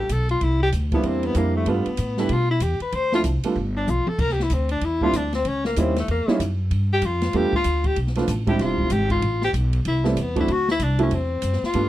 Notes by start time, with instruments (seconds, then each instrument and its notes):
0.00 tenor saxophone G4
0.09 upright bass B1, tenor saxophone A4, kick, hi-hat pedal, ride
0.29 tenor saxophone F4, ride
0.41 upright bass C2, tenor saxophone E4, kick, ride
0.63 tenor saxophone G4
0.72 upright bass D2, kick, hi-hat pedal, ride
0.92 grand piano G3 A#3 C4 D4 E4, tenor saxophone B3, kick, ride
1.03 upright bass E2, tenor saxophone C4, ride
1.23 tenor saxophone B3, ride
1.34 upright bass F2, grand piano G3 A#3 C4 D4 E4, tenor saxophone A#3, kick, hi-hat pedal, ride
1.56 tenor saxophone A3
1.66 upright bass G2, grand piano G3 A3 B3 D4 F4, tenor saxophone B3, kick, ride
1.86 muted upright bass stroke, ride
1.97 upright bass A2, kick, hi-hat pedal, ride
2.17 grand piano G3 A3 B3 D4 G4, tenor saxophone E4, snare
2.29 upright bass B2, tenor saxophone F4, kick, ride
2.51 tenor saxophone E4
2.60 upright bass E2, tenor saxophone G4, kick, hi-hat pedal, ride
2.80 tenor saxophone B4, muted upright bass stroke, ride
2.92 upright bass D2, tenor saxophone C5, kick, ride
3.12 grand piano F3 A3 C4 D4 E4, tenor saxophone F4, snare
3.24 upright bass C2, kick, hi-hat pedal, ride
3.43 grand piano G3 A3 B3 D4 F4, ride
3.56 upright bass G1, kick
3.77 tenor saxophone D4
3.87 upright bass B1, tenor saxophone F4, hi-hat pedal, high tom
4.07 tenor saxophone A4, high tom
4.18 upright bass C2, tenor saxophone A#4, kick, crash
4.29 tenor saxophone G4, snare
4.40 tenor saxophone E4, snare
4.50 upright bass D2, tenor saxophone C4, kick, hi-hat pedal, ride
4.69 tenor saxophone D4, ride
4.81 upright bass E2, tenor saxophone E4, kick, ride
5.01 grand piano G3 A#3 C4 D4 E4, tenor saxophone F4, kick
5.13 upright bass D2, tenor saxophone D4, kick, hi-hat pedal, ride
5.33 tenor saxophone C4, snare, ride
5.45 upright bass C#2, tenor saxophone C#4, kick, ride
5.65 tenor saxophone A#3, snare
5.76 upright bass D#2, grand piano G3 A#3 C#4 D#4 E4, tenor saxophone C4, kick, hi-hat pedal, ride
5.96 tenor saxophone A3, snare, ride
6.08 upright bass E2, tenor saxophone A#3, kick, ride
6.27 grand piano G3 A#3 C#4 D#4 E4, muted upright bass stroke, snare
6.40 upright bass F#2, kick, hi-hat pedal, ride
6.71 upright bass G2, kick, ride
6.93 tenor saxophone G4
7.02 upright bass F2, kick, hi-hat pedal, ride
7.06 tenor saxophone F4
7.21 snare, ride
7.33 upright bass E2, grand piano G3 A3 B3 D4 F4, tenor saxophone G4, kick, ride
7.52 tenor saxophone F4, muted upright bass stroke, kick
7.64 upright bass D2, kick, hi-hat pedal, ride
7.84 tenor saxophone G4, kick, ride
7.96 upright bass B1, kick, ride
8.07 snare
8.15 grand piano F3 A3 B3 D4 F4, snare, ride
8.28 upright bass A1, kick, hi-hat pedal, ride
8.47 grand piano G3 G#3 C4 D4 E4, tenor saxophone G4, kick, ride
8.59 upright bass E1, tenor saxophone F4, kick, snare, ride
8.78 kick
8.90 upright bass G#1, tenor saxophone G4, kick, hi-hat pedal, ride
9.10 tenor saxophone F4, kick, ride
9.22 upright bass A1, kick, ride
9.42 tenor saxophone G4, snare
9.53 upright bass B1, kick, hi-hat pedal, ride
9.73 ride
9.85 upright bass C2, tenor saxophone E4, kick, ride
10.04 grand piano G3 A3 B3 C4 E4, tenor saxophone G3, snare
10.16 upright bass E2, kick, hi-hat pedal, ride
10.21 tenor saxophone B3
10.36 grand piano F#3 A3 C4 D4 F#4, kick, ride
10.40 tenor saxophone E4
10.48 upright bass D2, kick, ride
10.52 tenor saxophone F#4
10.68 tenor saxophone E4, snare
10.79 upright bass C2, tenor saxophone D4, kick, hi-hat pedal, ride
10.99 grand piano F#3 A3 C4 D4 E4, ride
11.03 tenor saxophone C#4
11.11 upright bass E2, tenor saxophone C4, kick, ride
11.42 upright bass F#2, kick, hi-hat pedal, ride
11.53 snare
11.62 tenor saxophone F4, muted upright bass stroke, snare
11.73 upright bass G2, grand piano G3 A3 B3 D4 F4, kick, ride